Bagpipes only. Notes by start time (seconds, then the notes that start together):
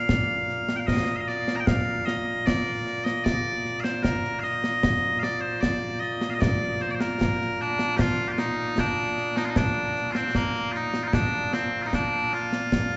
Already playing: A#2 A#3 F5
0.76 F5 G5
0.87 D#5
1.16 F5
1.20 D#5
1.28 D5
1.56 A#5
1.60 G5
1.66 F5
2.06 D#5
2.46 D5
3.04 D#5
3.24 D5
3.80 C5 F5
4.03 A#4
4.39 D#5 F5
5.19 D5 F5
5.40 C5
5.61 D5
6.00 D#5
6.30 D#5 F5
6.41 D5
6.81 C5
6.90 C5 D5
7.00 A#4
7.61 D4
7.97 F4 G4
8.28 F4 G4
8.38 D#4
8.79 D4
9.37 D#4
9.45 F4
9.49 D#4
9.57 D4
10.12 C4 F4
10.35 A#3
10.72 D#4 F4
11.03 D#4 F4
11.13 D4
11.53 C4
11.82 D#4 F4
11.94 D4
12.34 F4